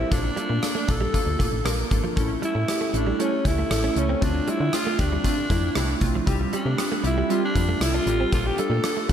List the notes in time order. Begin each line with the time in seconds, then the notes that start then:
Already playing: G3 C4 E4 F4 G4 A4 A#4
0.11 A#1 A#3 D4 F4 A4, kick, closed hi-hat
0.24 muted clean electric guitar stroke
0.36 G3 A#3 D4 F4 A4, closed hi-hat
0.49 A#2 A3
0.62 A#3 D4 F4 A4, cross-stick, closed hi-hat
0.75 A3
0.88 A#1 A#3 D4 F4 A4, muted clean electric guitar stroke, kick, closed hi-hat
1.01 G3
1.13 A#3 D4 F4 A4, kick, closed hi-hat
1.26 D2
1.39 A#1 A3 A#3 D4 F4 A4, kick, closed hi-hat
1.52 A1
1.65 A#1 G3 A#3 D4 F4 A#4, cross-stick, closed hi-hat
1.91 G#1 A#3 D4 F4 A4, muted clean electric guitar stroke, kick, closed hi-hat
2.04 F3
2.16 A1 A3 C#4 E4 A4, kick, closed hi-hat
2.30 muted clean electric guitar stroke
2.42 G3 A3 C#4 E4 A4, closed hi-hat
2.55 A2 A3
2.68 A3 C#4 E4 G4, cross-stick, closed hi-hat
2.81 A3
2.94 A1 A3 C#4 D4 E4 A4, muted clean electric guitar stroke, closed hi-hat
3.07 G3
3.19 G3 A3 C#4 E4 A4, closed hi-hat
3.44 C#2 A3 C#4 E4 A4, muted clean electric guitar stroke, kick, closed hi-hat
3.58 A3
3.70 A1 A3 C#4 E4 A4, cross-stick, closed hi-hat
3.84 C#4
3.96 C#2 A3 C#4 E4 A4, muted clean electric guitar stroke, closed hi-hat
4.09 C4
4.21 D2 A3 C4 D4 F4, kick, closed hi-hat
4.35 muted clean electric guitar stroke
4.47 G3 A3 C4 D4 E4 F4, closed hi-hat
4.60 D3 A3
4.73 A3 C4 D4 F4, cross-stick, closed hi-hat
4.86 A3
4.98 D2 A3 C4 D4 G4, muted clean electric guitar stroke, kick, closed hi-hat
5.12 G3
5.24 A3 C4 D4 F4, kick, closed hi-hat
5.49 F2 A3 C4 D4 E4, kick, closed hi-hat
5.75 C2 G3 A3 C4 D4 E4, cross-stick, closed hi-hat
6.01 B1 A3 C4 D4 F4, muted clean electric guitar stroke, kick, closed hi-hat
6.15 F3
6.26 C2 G3 C4 F4 G4, kick, closed hi-hat
6.41 muted clean electric guitar stroke
6.52 G3 C4 D4 F4 G4, closed hi-hat
6.66 C3 A3
6.78 G3 C4 F4 G4, cross-stick, closed hi-hat
6.92 A3
7.03 C2 G3 C4 E4 F4 G4, muted clean electric guitar stroke, closed hi-hat
7.18 G3
7.30 G3 C4 F4 G4, closed hi-hat
7.45 D4
7.55 F2 G3 C4 F4 G4, muted clean electric guitar stroke, kick, closed hi-hat
7.69 A3
7.81 C2 G3 C4 E4 F4 A4, cross-stick, closed hi-hat
7.94 D4 F4
8.06 A1 G3 C4 F4 G4, muted clean electric guitar stroke, closed hi-hat
8.20 C4
8.32 A#1 A#3 D4 F4 A4, kick, closed hi-hat
8.46 G4, muted clean electric guitar stroke
8.58 G3 A#3 D4 F4 A4, closed hi-hat
8.70 A#2 A3
8.84 A#3 D4 F4 A4, cross-stick, closed hi-hat
8.97 A3
9.09 A#1 A#3, muted clean electric guitar stroke, kick, closed hi-hat